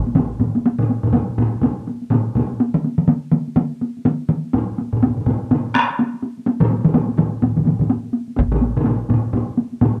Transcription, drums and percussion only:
0.06 taiko high
0.15 taiko low-mid, taiko mid, taiko high
0.40 taiko low-mid, taiko mid, taiko high
0.55 taiko high
0.66 taiko high
0.79 taiko low-mid, taiko high
0.89 taiko high
1.03 taiko low-mid, taiko high
1.13 taiko low-mid, taiko high
1.38 taiko low-mid, taiko high
1.54 taiko high
1.61 taiko low-mid, taiko high
1.78 taiko high
1.87 taiko high
2.02 taiko high
2.11 taiko low-mid, taiko high
2.27 taiko high
2.35 taiko low-mid, taiko high
2.51 taiko high
2.60 taiko high
2.74 taiko mid, taiko high
2.84 taiko high
2.98 taiko mid, taiko high
3.08 taiko mid, taiko high
3.32 taiko mid, taiko high
3.48 taiko high
3.56 taiko mid, taiko high
3.72 taiko high
3.81 taiko high
3.97 taiko high
4.05 taiko mid, taiko high
4.20 taiko high
4.29 taiko mid, taiko high
4.44 taiko high
4.53 taiko low-mid, taiko high
4.78 taiko high
4.93 taiko low-mid, taiko high
5.03 taiko low-mid, taiko high
5.17 taiko low-mid
5.26 taiko low-mid, taiko high
5.42 taiko high
5.51 taiko low-mid, taiko high
5.66 taiko high
5.75 taiko rim, taiko high
5.90 taiko high
5.99 taiko high
6.14 taiko high
6.22 taiko high
6.37 taiko high
6.46 taiko high
6.60 taiko low-mid, taiko mid
6.71 taiko high
6.84 taiko low-mid, taiko mid, taiko high
6.94 taiko low-mid, taiko mid, taiko high
7.08 taiko high
7.18 taiko low-mid, taiko mid, taiko high
7.33 taiko high
7.42 taiko low-mid, taiko mid, taiko high
7.56 taiko low-mid, taiko mid, taiko high
7.65 taiko low-mid, taiko mid, taiko high
7.79 taiko low-mid, taiko mid, taiko high
7.90 taiko high
8.04 taiko high
8.13 taiko high
8.28 taiko high
8.36 taiko, taiko high
8.52 taiko low-mid, taiko high
8.61 taiko high
8.76 taiko low-mid, taiko high
8.86 taiko low-mid, taiko high
9.09 taiko low-mid, taiko high
9.24 taiko high
9.33 taiko low-mid, taiko high
9.57 taiko high
9.72 taiko high
9.81 taiko low-mid, taiko high
9.96 taiko high

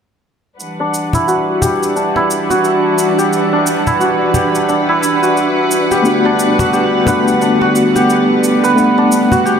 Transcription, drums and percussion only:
0.60 shaker
0.94 shaker
1.13 cajon bass, shaker
1.28 shaker
1.62 cajon bass, shaker
1.83 shaker
1.97 shaker
2.16 cajon slap
2.31 shaker
2.50 cajon slap, shaker
2.65 shaker
2.98 shaker
3.19 shaker
3.33 shaker
3.67 shaker
3.87 cajon bass, shaker
4.01 shaker
4.34 cajon bass, shaker
4.55 shaker
4.69 shaker
5.03 shaker
5.23 shaker
5.37 shaker
5.71 shaker
5.91 cajon slap, shaker
6.05 shaker
6.39 shaker
6.59 cajon bass, shaker
6.73 shaker
7.07 cajon bass, shaker
7.28 shaker
7.42 shaker
7.61 cajon slap
7.76 shaker
7.96 cajon slap, shaker
8.10 shaker
8.44 shaker
8.64 shaker
8.78 shaker
9.12 shaker
9.32 cajon bass, shaker
9.46 shaker

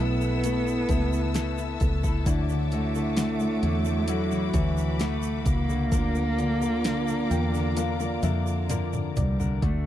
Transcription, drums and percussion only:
0.21 shaker
0.44 closed hi-hat, shaker
0.67 shaker
0.89 kick, closed hi-hat, shaker
1.13 shaker
1.34 snare, closed hi-hat, shaker
1.58 shaker
1.80 kick, closed hi-hat, shaker
2.04 kick, shaker
2.26 kick, closed hi-hat, shaker
2.49 shaker
2.72 closed hi-hat, shaker
2.95 shaker
3.17 snare, closed hi-hat, shaker
3.40 shaker
3.63 closed hi-hat
3.85 shaker
4.08 closed hi-hat, shaker
4.31 shaker
4.54 kick, closed hi-hat, shaker
4.77 shaker
5.00 snare, closed hi-hat, shaker
5.23 shaker
5.46 kick, closed hi-hat, shaker
5.70 shaker
5.92 kick, closed hi-hat, shaker
6.15 shaker
6.39 closed hi-hat, shaker
6.62 shaker
6.84 snare, closed hi-hat, shaker
7.08 shaker
7.31 closed hi-hat, shaker
7.54 snare, shaker
7.77 closed hi-hat, high tom, shaker
8.00 high tom, shaker
8.23 closed hi-hat, mid tom, shaker
8.47 shaker
8.69 closed hi-hat, mid tom, shaker
8.93 mid tom, shaker
9.16 closed hi-hat, floor tom, shaker
9.40 floor tom, shaker
9.62 kick, closed hi-hat

